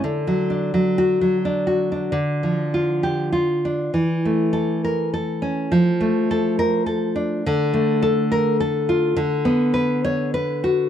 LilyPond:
\new Staff \with { instrumentName = "Nylon-string guitar" } { \time 3/4 \key d \major \tempo 4 = 102 << { r4 \tuplet 3/2 { r8 fis'4 } r4 | \key d \minor r4. g'8 r4 | r4. bes'8 r4 | r4. bes'8 r4 |
r4. bes'8 r4 | \key b \minor r4. cis''8 r4 | } \\ { \tuplet 3/2 { d8 fis8 d'8 fis4 fis8 d'8 fis'8 d'8 } | d8 f8 f'4 f'8 d'8 | e8 a8 a'4 a'8 cis'8 | f8 a8 a'4 a'8 d'8 |
d8 a8 a'4 a'8 f'8 | d8 b8 b'4 b'8 fis'8 | } >> }